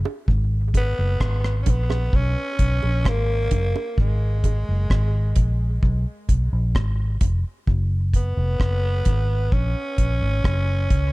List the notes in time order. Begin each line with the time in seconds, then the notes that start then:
0.05 high bongo
0.28 G#1, kick
0.74 B3, kick, closed hi-hat, high bongo
0.99 F#1
1.20 G#1, kick, cross-stick
1.44 cross-stick
1.62 C#4, closed hi-hat, low bongo
1.67 A#1 B3, kick
1.90 cross-stick, high bongo
2.13 B1 C#4, kick
2.59 B1, kick, closed hi-hat
2.83 A#1, high bongo
3.05 A#3, kick, cross-stick, high bongo
3.51 F#1, kick, closed hi-hat, low bongo
3.75 high bongo
3.98 G#1 G#3, kick
4.44 kick, closed hi-hat, high bongo
4.68 F#1
4.90 G#1, kick, cross-stick
5.36 A#1, kick, closed hi-hat
5.83 B1, kick
6.29 B1, kick, closed hi-hat
6.53 A#1
6.75 kick, cross-stick
7.21 F1, kick, closed hi-hat
7.67 F#1, kick
8.14 B3, kick, closed hi-hat
8.37 F1
8.60 F#1, kick, cross-stick
9.05 G#1, kick, closed hi-hat
9.52 A#1 C#4, kick
9.98 A#1, kick, closed hi-hat
10.22 G#1
10.44 F#1, kick, cross-stick
10.90 C#2, kick, closed hi-hat